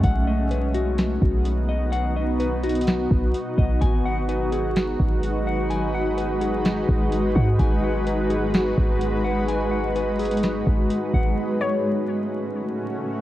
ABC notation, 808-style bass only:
X:1
M:4/4
L:1/8
Q:1/4=127
K:G#phr
V:1 name="808-style bass" clef=bass
B,,,4- B,,, B,,,3- | B,,,4- B,,, B,,, z B,,, | G,,,4- G,,, G,,,3- | G,,,4- G,,, G,,,2 G,, |
G,,,4- G,,, G,,,3- | G,,,4- G,,, G,,, z G,,, | z8 |]